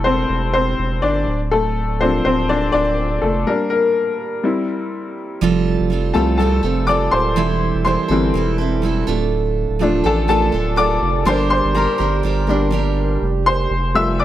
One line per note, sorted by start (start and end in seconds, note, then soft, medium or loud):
0.00 0.25 E1 medium
0.00 1.23 G3 soft
0.00 1.29 A3 medium
0.00 0.06 C4 soft
0.00 1.23 E4 medium
0.00 1.29 A4 medium
0.04 0.51 C4 medium
0.04 0.50 C5 medium
0.29 0.75 E1 loud
0.54 1.00 C4 medium
0.54 1.04 C5 medium
0.79 1.01 E1 medium
1.02 1.26 G1 medium
1.02 1.38 D4 medium
1.02 1.38 D5 medium
1.27 2.21 D1 medium
1.51 1.98 A3 medium
1.51 2.02 A4 medium
2.00 2.70 F3 soft
2.00 2.70 A3 soft
2.00 2.24 C4 medium
2.00 2.49 D4 medium
2.00 2.23 C5 medium
2.25 2.70 D1 medium
2.25 2.48 C4 medium
2.25 2.48 C5 medium
2.49 2.55 D4 medium
2.49 2.55 D5 loud
2.72 3.19 D1 loud
2.72 3.19 D4 medium
2.72 3.23 D5 loud
3.22 3.45 F1 medium
3.22 3.46 A3 medium
3.22 3.47 A4 medium
3.47 4.16 G3 soft
3.47 3.70 A#3 medium
3.47 4.17 D4 medium
3.47 3.68 A#4 medium
3.70 5.14 A#3 medium
3.70 5.13 A#4 medium
4.43 5.38 G3 medium
4.43 5.38 C4 soft
4.43 5.38 E4 medium
5.41 5.77 F1 loud
5.41 5.90 F3 medium
5.41 5.90 G3 medium
5.41 5.91 C4 medium
5.41 5.91 F4 loud
5.41 5.93 A4 loud
5.80 6.13 F1 medium
5.90 6.15 G3 medium
5.90 6.16 C4 medium
5.90 6.15 F4 medium
5.90 6.13 A4 medium
6.14 6.61 C2 medium
6.14 7.32 F3 medium
6.14 7.33 G3 soft
6.14 7.33 A3 medium
6.14 6.39 C4 soft
6.14 6.40 F4 medium
6.14 6.39 A4 medium
6.14 6.37 A4 medium
6.14 6.36 A5 medium
6.38 6.64 G3 medium
6.38 6.64 C4 medium
6.38 6.63 F4 medium
6.38 6.85 A4 medium
6.38 6.84 A5 medium
6.42 6.62 A4 medium
6.63 7.09 F1 medium
6.63 6.87 C4 soft
6.63 6.88 F4 medium
6.63 6.88 A4 medium
6.87 7.35 G3 medium
6.87 7.36 C4 medium
6.87 7.37 F4 medium
6.87 7.37 A4 medium
6.87 7.11 D5 medium
6.87 7.13 D6 medium
7.11 7.35 D1 medium
7.11 7.82 C5 medium
7.11 7.83 C6 medium
7.36 7.72 E1 medium
7.36 7.85 E3 loud
7.36 7.83 G3 medium
7.36 7.85 C4 medium
7.36 7.86 E4 loud
7.36 7.87 A4 medium
7.75 7.98 E1 medium
7.85 8.10 G3 medium
7.85 8.10 C4 medium
7.85 8.09 E4 medium
7.85 8.07 A4 medium
7.85 9.04 C5 medium
7.85 9.03 C6 medium
8.08 8.33 G1 medium
8.08 9.04 E3 medium
8.08 9.04 G3 soft
8.08 9.04 C4 medium
8.08 8.34 C4 soft
8.08 8.35 E4 medium
8.08 8.34 A4 medium
8.34 9.04 E1 loud
8.34 8.59 G3 medium
8.34 8.59 C4 medium
8.34 8.59 E4 medium
8.34 8.57 A4 medium
8.58 8.82 C4 medium
8.58 8.83 E4 medium
8.58 8.83 A4 medium
8.82 9.07 G3 medium
8.82 9.08 C4 medium
8.82 9.07 E4 medium
8.82 9.06 A4 medium
9.07 9.66 D1 loud
9.07 12.59 D3 medium
9.07 9.78 A3 medium
9.07 9.80 D4 medium
9.07 9.80 F4 medium
9.07 9.80 A4 medium
9.70 10.03 D1 medium
9.79 10.14 F3 medium
9.79 10.04 A3 medium
9.79 10.15 A3 medium
9.79 10.05 D4 medium
9.79 10.15 D4 medium
9.79 10.04 F4 medium
9.79 10.02 A4 medium
10.04 10.51 A1 medium
10.04 10.28 D4 soft
10.04 10.29 F4 medium
10.04 10.29 A4 medium
10.04 10.12 A4 medium
10.04 10.11 A5 medium
10.28 10.53 A3 medium
10.28 10.54 D4 medium
10.28 10.53 F4 medium
10.28 10.75 A4 medium
10.28 10.51 A4 medium
10.28 10.79 A5 loud
10.52 10.99 D1 medium
10.52 10.76 D4 medium
10.52 10.77 F4 medium
10.52 10.77 A4 medium
10.76 11.25 A3 medium
10.76 11.25 D4 medium
10.76 11.27 F4 medium
10.76 11.27 A4 medium
10.76 11.24 D5 medium
10.76 11.23 D6 loud
11.02 11.25 F1 medium
11.25 11.62 G1 loud
11.25 11.74 G3 medium
11.25 12.47 G3 medium
11.25 12.47 A#3 soft
11.25 11.74 D4 loud
11.25 12.48 D4 medium
11.25 11.76 G4 loud
11.25 11.76 A#4 loud
11.25 11.50 C5 medium
11.25 11.49 C6 medium
11.50 11.75 C5 medium
11.50 11.76 C6 loud
11.65 11.88 G1 medium
11.74 11.99 G3 medium
11.74 12.00 D4 medium
11.74 11.99 G4 medium
11.74 12.94 A#4 medium
11.74 11.97 A#4 medium
11.74 12.93 A#5 medium
11.98 12.23 G1 loud
11.98 12.23 D4 medium
11.98 12.24 G4 medium
11.98 12.23 A#4 medium
12.23 13.18 G1 loud
12.23 12.48 G3 medium
12.23 12.49 D4 medium
12.23 12.48 G4 medium
12.23 12.46 A#4 medium
12.47 12.70 G3 soft
12.47 12.71 A#3 soft
12.47 12.71 D4 medium
12.47 12.72 G4 medium
12.47 12.72 A#4 medium
12.71 13.72 G3 medium
12.71 13.21 D4 medium
12.71 13.72 G4 medium
12.71 13.22 A#4 medium
13.22 13.67 F1 loud
13.46 13.92 C5 medium
13.46 13.96 C6 loud
13.70 14.25 F1 loud
13.94 14.25 F3 medium
13.94 14.25 G3 medium
13.94 14.25 A3 medium
13.94 14.18 E5 medium
13.94 14.20 E6 loud
14.20 14.25 D5 medium
14.20 14.25 D6 medium